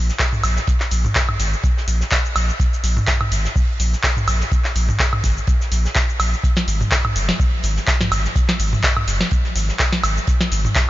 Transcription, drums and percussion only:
0.09 snare soft
0.09 shaker soft
0.19 kick loud
0.19 snare loud
0.19 clap loud
0.19 closed hi-hat medium
0.19 shaker soft
0.33 mid tom medium
0.33 shaker soft
0.44 closed hi-hat medium
0.44 open hi-hat loud
0.44 high woodblock medium
0.44 shaker medium
0.56 snare medium
0.56 shaker soft
0.67 kick loud
0.67 closed hi-hat loud
0.67 shaker soft
0.80 snare soft
0.80 clap soft
0.80 shaker soft
0.91 closed hi-hat medium
0.91 open hi-hat loud
0.91 shaker medium
1.05 mid tom medium
1.05 shaker soft
1.15 kick loud
1.15 snare loud
1.15 clap loud
1.15 closed hi-hat medium
1.15 shaker soft
1.29 mid tom medium
1.29 high woodblock medium
1.39 snare soft
1.39 closed hi-hat medium
1.39 open hi-hat loud
1.39 shaker medium
1.53 shaker soft
1.63 kick loud
1.63 closed hi-hat medium
1.63 shaker soft
1.77 snare soft
1.88 closed hi-hat medium
1.88 open hi-hat loud
1.88 shaker medium
2.01 snare medium
2.01 shaker soft
2.11 kick loud
2.11 snare loud
2.11 clap loud
2.11 closed hi-hat medium
2.11 shaker soft
2.25 shaker soft
2.36 closed hi-hat medium
2.36 open hi-hat loud
2.36 high woodblock medium
2.36 shaker medium
2.49 shaker soft
2.60 kick loud
2.60 closed hi-hat medium
2.60 shaker soft
2.73 closed hi-hat soft
2.73 shaker soft
2.84 closed hi-hat medium
2.84 open hi-hat loud
2.84 shaker medium
2.97 mid tom loud
2.97 shaker soft
3.07 kick loud
3.07 snare loud
3.07 clap loud
3.07 closed hi-hat medium
3.07 shaker soft
3.21 mid tom medium
3.21 high woodblock medium
3.32 closed hi-hat medium
3.32 open hi-hat loud
3.32 shaker medium
3.45 snare medium
3.45 shaker soft
3.56 kick loud
3.56 open hi-hat medium
3.56 shaker soft
3.80 closed hi-hat medium
3.80 open hi-hat loud
3.80 shaker medium
3.93 snare soft
3.93 shaker soft
4.03 kick loud
4.03 snare loud
4.03 clap loud
4.03 closed hi-hat medium
4.03 shaker soft
4.17 mid tom medium
4.17 shaker soft
4.28 closed hi-hat medium
4.28 open hi-hat loud
4.28 high woodblock medium
4.28 shaker medium
4.41 snare medium
4.41 shaker soft
4.51 kick loud
4.51 closed hi-hat medium
4.51 shaker soft
4.64 snare soft
4.64 clap soft
4.64 shaker soft
4.76 closed hi-hat medium
4.76 open hi-hat loud
4.76 shaker medium
4.89 mid tom medium
4.89 shaker soft
4.99 kick loud
4.99 snare loud
4.99 clap loud
4.99 closed hi-hat medium
4.99 shaker soft
5.13 mid tom medium
5.13 high woodblock medium
5.23 kick medium
5.23 snare soft
5.23 closed hi-hat medium
5.23 open hi-hat loud
5.23 shaker medium
5.37 shaker soft
5.47 kick loud
5.47 closed hi-hat medium
5.47 shaker soft
5.61 snare soft
5.61 shaker soft
5.72 closed hi-hat medium
5.72 open hi-hat loud
5.72 shaker medium
5.85 snare medium
5.85 shaker soft
5.95 kick loud
5.95 snare loud
5.95 clap loud
5.95 closed hi-hat medium
5.95 shaker soft
6.09 shaker soft
6.20 closed hi-hat medium
6.20 open hi-hat loud
6.20 high woodblock medium
6.20 shaker medium
6.33 shaker soft
6.44 kick loud
6.44 closed hi-hat medium
6.44 shaker soft
6.56 snare medium
6.56 closed hi-hat soft
6.56 shaker soft
6.68 closed hi-hat medium
6.68 open hi-hat loud
6.68 shaker medium
6.81 mid tom medium
6.81 shaker soft
6.91 kick loud
6.91 snare loud
6.91 clap loud
6.91 closed hi-hat medium
6.91 shaker soft
7.05 mid tom medium
7.05 high woodblock medium
7.16 closed hi-hat medium
7.16 open hi-hat loud
7.16 shaker medium
7.28 snare medium
7.28 shaker soft
7.39 kick loud
7.39 open hi-hat medium
7.39 shaker soft
7.63 closed hi-hat medium
7.63 open hi-hat loud
7.63 shaker medium
7.77 snare soft
7.77 shaker soft
7.87 kick loud
7.87 snare loud
7.87 clap loud
7.87 closed hi-hat medium
7.87 shaker soft
8.01 snare medium
8.01 mid tom medium
8.01 shaker soft
8.12 closed hi-hat medium
8.12 open hi-hat loud
8.12 high woodblock medium
8.12 shaker medium
8.25 snare soft
8.25 shaker soft
8.36 kick loud
8.36 closed hi-hat medium
8.36 shaker soft
8.48 snare soft
8.48 snare medium
8.48 clap soft
8.48 shaker soft
8.59 closed hi-hat medium
8.59 open hi-hat loud
8.59 shaker medium
8.73 mid tom medium
8.73 shaker soft
8.83 kick loud
8.83 snare loud
8.83 clap loud
8.83 closed hi-hat medium
8.83 shaker soft
8.97 mid tom medium
8.97 high woodblock medium
9.07 snare medium
9.07 closed hi-hat medium
9.07 open hi-hat loud
9.07 shaker medium
9.21 snare medium
9.21 shaker soft
9.31 kick loud
9.31 closed hi-hat medium
9.31 shaker soft
9.44 snare soft
9.56 closed hi-hat medium
9.56 open hi-hat loud
9.56 shaker medium
9.69 snare soft
9.69 shaker soft
9.79 kick loud
9.79 snare loud
9.79 clap loud
9.79 closed hi-hat medium
9.79 shaker soft
9.93 snare medium
9.93 shaker soft
10.03 closed hi-hat medium
10.03 open hi-hat loud
10.03 high woodblock medium
10.03 shaker medium
10.17 shaker soft
10.27 kick loud
10.27 closed hi-hat loud
10.27 shaker soft
10.41 snare medium
10.41 closed hi-hat soft
10.41 shaker soft
10.52 closed hi-hat medium
10.52 open hi-hat medium
10.52 shaker medium
10.65 mid tom medium
10.65 shaker soft
10.75 kick loud
10.75 snare loud
10.75 clap loud
10.75 closed hi-hat medium
10.75 shaker soft

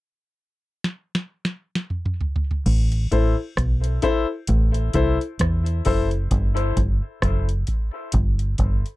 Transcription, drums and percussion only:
0.84 snare medium
1.15 snare medium
1.45 snare medium
1.75 snare medium
1.90 mid tom medium
2.06 mid tom medium
2.21 floor tom medium
2.36 floor tom loud
2.51 floor tom medium
2.66 kick loud
2.66 crash medium
2.92 closed hi-hat medium
3.12 kick loud
3.12 closed hi-hat medium
3.57 kick loud
3.57 cross-stick loud
3.57 closed hi-hat medium
3.84 closed hi-hat medium
4.02 kick medium
4.02 closed hi-hat medium
4.47 kick loud
4.47 closed hi-hat loud
4.74 closed hi-hat medium
4.93 kick medium
4.93 closed hi-hat medium
5.21 closed hi-hat soft
5.39 kick loud
5.39 cross-stick loud
5.39 closed hi-hat medium
5.66 closed hi-hat soft
5.85 kick medium
5.85 open hi-hat medium
6.11 closed hi-hat soft
6.31 kick loud
6.31 closed hi-hat medium
6.57 closed hi-hat medium
6.77 kick loud
6.77 closed hi-hat medium
7.22 kick loud
7.22 cross-stick loud
7.22 closed hi-hat medium
7.49 closed hi-hat medium
7.67 kick medium
7.67 closed hi-hat medium
8.12 kick loud
8.12 closed hi-hat loud
8.39 closed hi-hat soft
8.58 kick medium
8.58 closed hi-hat medium
8.86 closed hi-hat soft

